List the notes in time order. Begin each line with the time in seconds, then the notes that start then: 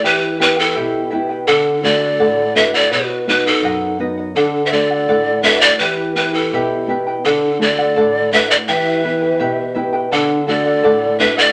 0.04 E3 E4 G4 B4 E5 G5
0.39 B3 E4 G4 B4 E5 G5
0.56 E4 A4 B4 G5
0.75 B2 E4 G4 B4 E5 G5
1.10 B3 E4 G4 B4 E5 G5
1.29 E4 B4 G5
1.47 D3 D4 A4 D5 F#5
1.82 A3 D4 F#4 A4 D5 F#5
2.01 D5 F#5
2.19 A2 A4 D5 F#5
2.55 A3 D4 F#4 A4 B4 D5 E5
2.74 A4 D5 F#5
2.91 B2 F#4 B4 D#5 F#5
3.27 B3 D#4 F#4 B4 D#5 F#5
3.46 D#4 A4 D#5 F#5
3.63 F#2 B4 D#5 F#5
3.99 B3 D#4 F#4 B4 D#5 F#5
4.18 D#5 F#5
4.35 D3 D4 A4 D5 F#5
4.65 C5 E5
4.71 A3 D4 F#4 A4 D5 F#5
4.91 D5 F#5
5.08 A2 A4 D5 F#5
5.43 A3 D4 F#4 A4 B4 D5 E5 F#5
5.61 A4 D5 F#5
5.78 E3 E4 G4 B4 E5 G5
6.15 B3 E4 G4 B4 E5 G5
6.34 E4 A4 B4 G5
6.53 B2 E4 G4 B4 E5 G5
6.87 B3 E4 G4 B4 E5 G5
7.07 E4 B4 G5
7.24 D3 D4 A4 D5 F#5
7.59 A3 D4 F#4 A4 D5 F#5
7.79 D5 F#5
7.96 A2 A4 D5 F#5
8.32 A3 D4 F#4 A4 B4 D5 E5 F#5
8.50 A4 D5 F#5
8.68 E3 E4 G4 B4 E5 G5
9.04 B3 E4 G4 B4 E5 G5
9.22 E4 B4 G5
9.39 B2 E4 G4 B4 E5 G5
9.74 B3 E4 G4 B4 E5 G5
9.93 E4 B4 G5
10.11 D3 D4 A4 D5 F#5
10.47 A3 D4 F#4 A4 D5 F#5
10.65 D5 F#5
10.83 A2 A4 D5 F#5
11.19 A3 D4 F#4 A4 B4 D5 E5 F#5
11.37 A4 D5 F#5